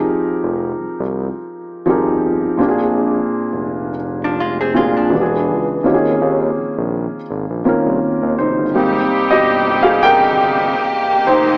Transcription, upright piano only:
Already playing: F3 C4 D#4 G4 G#4 A#4
1.86 F3 C4 D#4 G4 G#4
1.90 A#4
2.57 A#2 A#3 C4 D4
2.62 G4
2.69 G#4
4.74 A#2 A#3 C4 D4
4.79 G#4
5.10 E3 B3 D4 F#4
5.15 G4
5.21 G#4
5.83 D#3 A#3 C4 C#4 F4
5.88 G4
5.94 G#4
7.64 D#3 A#3 C4 C#4 F4
7.69 A#4
8.38 D#4 C5
8.74 G3 A#3 C4
9.31 G4 D#5
9.83 G#4 F5
10.03 A#4 G5
11.27 D#4 C5

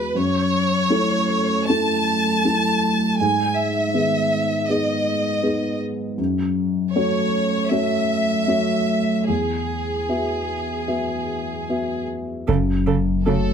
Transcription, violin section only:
Already playing: B4
0.17 C#5
1.68 A5
3.18 G#5
3.55 E5
4.68 D#5
6.93 C#5
7.70 E5
9.28 G#4
13.25 A4

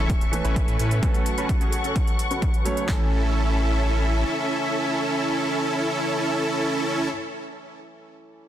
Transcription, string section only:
Already playing: A4 E5 C#6
1.03 F#5 C#6
2.89 C#4 A4 E5

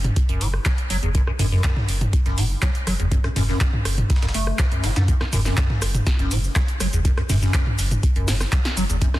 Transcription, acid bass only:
0.29 F#2
0.41 A2
0.66 F#3
0.90 F#3
1.03 E2
1.15 F#2
1.27 F#2
1.39 F#2
1.52 F#2
2.26 F#2
2.38 A2
2.62 F#3
2.87 F#3
3.00 E2
3.12 F#2
3.24 F#2
3.36 F#2
3.49 F#2
4.23 F#2
4.35 A3
4.59 F#2
4.72 F#2
4.84 A2
4.96 G#2
5.08 F#2
5.21 F#2
5.33 F#2
5.45 F#2
5.57 F#2
6.19 F#2
6.31 A2
6.56 F#3
6.80 F#3
6.93 E2
7.05 F#2
7.18 F#2
7.30 F#2
7.42 F#2
8.16 F#2
8.28 A2
8.53 F#3
8.77 F#3
8.90 E2
9.02 F#2
9.14 F#2

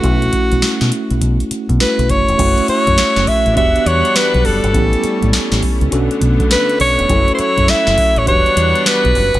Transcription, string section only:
2.39 A3 E4 F#4
3.56 E3 G3 B3 D4 F#5
4.74 A3 C#4
5.92 D3 B3
7.09 F#3 E4
8.27 E3 G3 B3 D4 F#5

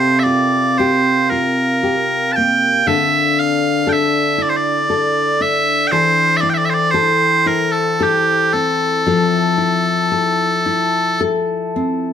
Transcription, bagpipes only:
Already playing: C5
0.19 E5
0.23 D5
0.78 C5
1.30 A#4
2.32 G5 A5
2.87 E5
3.39 F5
3.89 E5 G5
4.42 D5
4.49 C5
4.56 D5
5.42 E5
5.87 G5
5.92 C5
6.37 D5 E5
6.50 G5
6.54 D5 E5
6.65 E5
6.70 C5
6.74 D5
6.91 C5
7.47 A#4
7.72 A4
8.03 G4
8.53 A4

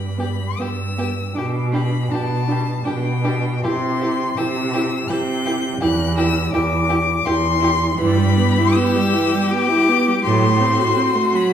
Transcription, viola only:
0.18 B3
0.59 B3
0.98 B3
1.35 D4
1.72 D4
2.10 D4
2.47 D4
2.84 D4
3.24 D4
3.64 E4
4.01 E4
4.37 E4
4.74 E4
5.09 E4
5.45 E4
5.81 E4
6.17 E4
6.52 E4
6.89 E4
7.26 E4
7.61 E4
7.97 E3
8.17 G3
8.37 B3
8.58 E4
8.76 B3
8.96 G3
9.13 E3
9.33 G3
9.52 B3
9.69 E4
9.89 B3
10.07 G3
10.25 F#3
10.44 A3
10.60 C4
10.79 F#4
10.97 C4
11.15 A3
11.33 F#3

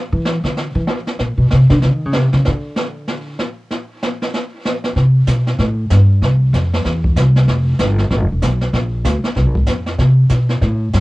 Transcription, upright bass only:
0.12 E3
0.44 D3
0.75 E3
1.20 A#2
1.38 B2
1.52 C3
1.70 D3
1.84 C#3
1.95 D#3
2.05 C#3
2.16 C3
2.33 C#3
2.47 D3
4.96 C3
5.27 B2
5.59 A2
5.90 G2
6.22 C2
6.53 F2
6.85 E2
7.16 C2
7.48 F1
7.79 G1
8.11 A1
8.21 F1
8.32 E1
8.42 B1
8.73 A#1
9.05 D2
9.24 muted upright bass stroke
9.36 C2
9.46 A#1
9.57 G#1
9.67 F2
9.98 C3
10.30 B2
10.61 A2
10.94 G2

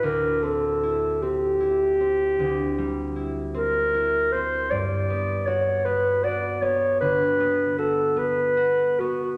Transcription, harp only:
Already playing: E4
0.03 D2
0.43 C4
0.83 E4
1.22 C4
1.60 E4
2.00 C4
2.39 D2
2.78 G3
3.16 E4
3.54 C4
3.94 E4
4.34 C4
4.71 G2
5.10 B3
5.47 F#4
5.86 B3
6.24 F#4
6.62 B3
7.01 D3
7.40 B3
7.78 F#4
8.16 B3
8.57 F#4
9.00 B3

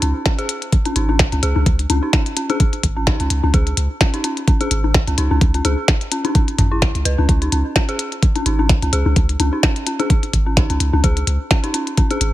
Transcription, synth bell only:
0.02 C#4
0.25 C#4
0.38 G#4
0.85 C#4
0.96 D#4
1.09 C#4
1.32 C#4
1.43 G#4
1.90 C#4
2.03 D#4
2.13 C#4
2.37 C#4
2.50 G#4
2.96 C#4
3.07 D#4
3.20 C#4
3.44 C#4
3.54 G#4
4.01 C#4
4.14 D#4
4.24 C#4
4.48 C#4
4.61 G#4
5.08 C#4
5.18 D#4
5.31 C#4
5.54 C#4
5.65 G#4
6.12 C#4
6.25 D#4
6.35 C#4
6.58 C#4
6.71 E4
7.05 B4
7.18 C#4
7.29 C#4
7.42 D#4
7.52 C#4
7.76 C#4
7.89 G#4
8.36 C#4
8.46 D#4
8.59 C#4
8.82 C#4
8.93 G#4
9.40 C#4
9.53 D#4
9.63 C#4
9.87 C#4
9.99 G#4
10.46 C#4
10.57 D#4
10.70 C#4
10.93 C#4
11.04 G#4
11.51 C#4
11.64 D#4
11.74 C#4
11.98 C#4
12.11 G#4

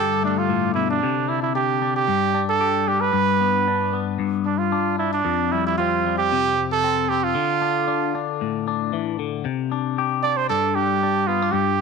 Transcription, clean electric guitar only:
Already playing: G2 D3 G4
0.23 A3
0.49 A2
0.75 B2
1.03 C3
1.28 D4
1.55 D4
1.82 D4
2.08 G2
2.34 D4
2.61 G4
2.88 D4
3.13 G2
3.40 B3
3.68 D4
3.93 B3
4.19 G2
4.72 D4
4.99 D4
5.25 F2
5.52 G3
5.80 C4
6.06 G3
6.32 C3
6.58 muted clean electric guitar stroke
6.84 C4
7.11 C4
7.35 D3
7.62 D4
7.88 D4
8.15 D4
8.41 A2
8.68 D4
8.93 E3
9.19 D3
9.45 C3
9.72 D4
9.98 G4
10.24 D4
10.50 G2
10.76 D4
11.03 D4
11.28 B3
11.42 D4
11.53 G2

